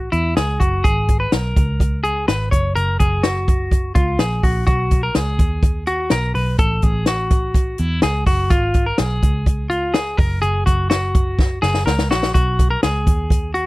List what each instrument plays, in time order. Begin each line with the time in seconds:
0.12 picked electric bass E2, clean electric guitar E4, closed hi-hat
0.37 picked electric bass C#2, clean electric guitar G#4, snare, closed hi-hat
0.60 picked electric bass F#1, clean electric guitar F#4, kick, closed hi-hat
0.84 picked electric bass G#1, clean electric guitar G#4, kick, closed hi-hat
1.08 kick, closed hi-hat
1.20 clean electric guitar B4
1.32 picked electric bass B1, clean electric guitar A#4, snare, closed hi-hat
1.56 picked electric bass C#2, kick, closed hi-hat
1.80 kick, closed hi-hat
2.04 clean electric guitar G#4, closed hi-hat
2.28 picked electric bass G#1, clean electric guitar B4, snare, closed hi-hat
2.51 picked electric bass F#1, clean electric guitar C#5, kick, closed hi-hat
2.75 picked electric bass F#1, clean electric guitar A#4, closed hi-hat
3.00 picked electric bass F#1, clean electric guitar G#4, kick, closed hi-hat
3.23 clean electric guitar F#4, snare, closed hi-hat
3.48 kick, closed hi-hat
3.71 kick, closed hi-hat
3.95 picked electric bass C#2, clean electric guitar F4, kick, closed hi-hat
4.19 picked electric bass A#1, clean electric guitar G#4, snare, closed hi-hat
4.43 picked electric bass A#1, clean electric guitar F#4, kick, open hi-hat
4.67 picked electric bass B1, clean electric guitar F#4, kick, closed hi-hat
4.91 kick, closed hi-hat
5.03 clean electric guitar A#4
5.15 picked electric bass C#2, clean electric guitar G#4, snare, closed hi-hat
5.39 picked electric bass D#2, kick, closed hi-hat
5.63 kick, closed hi-hat
5.86 clean electric guitar F#4, closed hi-hat
6.10 picked electric bass B1, clean electric guitar A#4, snare, closed hi-hat
6.35 picked electric bass B1, clean electric guitar B4, open hi-hat
6.59 picked electric bass A1, clean electric guitar A4, kick, closed hi-hat
6.82 picked electric bass A1, clean electric guitar G#4, kick, closed hi-hat
7.06 clean electric guitar F#4, snare, closed hi-hat
7.30 kick, closed hi-hat
7.54 kick, closed hi-hat
7.78 picked electric bass E2, clean electric guitar E4, closed hi-hat
8.02 picked electric bass C#2, clean electric guitar G#4, snare, closed hi-hat
8.26 picked electric bass F#1, clean electric guitar F#4, kick, open hi-hat
8.50 picked electric bass G#1, clean electric guitar F4, kick, closed hi-hat
8.74 kick, closed hi-hat
8.86 clean electric guitar A#4
8.98 picked electric bass B1, clean electric guitar G#4, snare, closed hi-hat
9.23 picked electric bass C#2, kick, closed hi-hat
9.46 kick, closed hi-hat
9.70 clean electric guitar F4, closed hi-hat
9.94 clean electric guitar G#4, snare, closed hi-hat
10.17 picked electric bass F#1, clean electric guitar A#4, kick, open hi-hat
10.42 picked electric bass F#1, clean electric guitar G#4, closed hi-hat
10.66 picked electric bass F#1, clean electric guitar F#4, kick, closed hi-hat
10.90 clean electric guitar F#4, snare, closed hi-hat
11.15 kick, closed hi-hat
11.39 kick, snare
11.62 picked electric bass F#1, clean electric guitar G#4, snare
11.74 snare
11.86 picked electric bass C#2, clean electric guitar A#4, snare
11.99 snare
12.11 picked electric bass A#1, clean electric guitar F#4, snare
12.23 snare
12.34 picked electric bass B1, clean electric guitar F#4, kick, closed hi-hat
12.59 kick, closed hi-hat
12.71 clean electric guitar A#4
12.83 picked electric bass C#2, clean electric guitar G#4, snare, closed hi-hat
13.07 picked electric bass D#2, kick, closed hi-hat
13.30 kick, closed hi-hat
13.54 clean electric guitar F#4, closed hi-hat